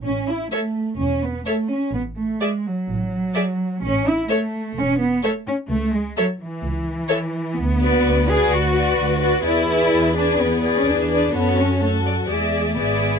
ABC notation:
X:1
M:4/4
L:1/16
Q:1/4=127
K:A
V:1 name="Violin section"
z4 e4 z4 e4 | z4 e4 z4 e4 | z4 e4 z4 e4 | z4 e4 z4 e4 |
z2 d4 d4 d4 d2 | d2 d4 d4 d4 d2 | c4 c2 d2 e4 e4 |]
V:2 name="Violin section"
z4 c4 z4 c4 | z4 d4 z4 d4 | z4 c4 z4 c4 | z4 c4 z4 c4 |
z2 B4 B4 B4 B2 | B2 B4 B4 B4 B2 | A4 A4 d4 d4 |]
V:3 name="Viola section"
z4 A4 z4 A4 | z4 G4 z4 G4 | z4 A4 z4 A4 | z4 A4 z4 A4 |
z2 F4 F4 F4 F2 | G2 G4 G4 G4 G2 | F4 F4 G4 G4 |]
V:4 name="Cello section"
C2 E2 A,4 C2 B,2 A,2 C2 | B,2 A,2 G,2 F,8- F,2 | C2 E2 A,4 C2 B,2 A,2 C2 | A,2 G,2 F,2 E,8- E,2 |
B,6 G2 F6 F2 | E6 D2 B,3 C D4 | B,2 C2 A,2 F,2 G,3 A, B,4 |]
V:5 name="Double bass section" clef=bass
A,,,4 z4 E,,,4 z4 | A,,,4 z4 A,,,4 z4 | A,,,4 z4 E,,,4 z4 | C,,4 z4 C,,4 z4 |
D,,4 D,,4 D,,4 D,,4 | E,,4 E,,4 E,,4 E,,4 | F,,8 E,,4 G,,,4 |]